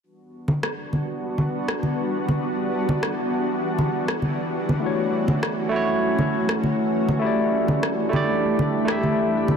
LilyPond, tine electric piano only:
\new Staff \with { instrumentName = "Tine electric piano" } { \time 4/4 \key e \dorian \tempo 4 = 100 r1 | r1 | <a e' fis' cis''>4. <a e' fis' cis''>2~ <a e' fis' cis''>8 | <a e' g' d''>4. <a e' g' d''>4~ <a e' g' d''>16 <a e' g' e''>4~ <a e' g' e''>16 | }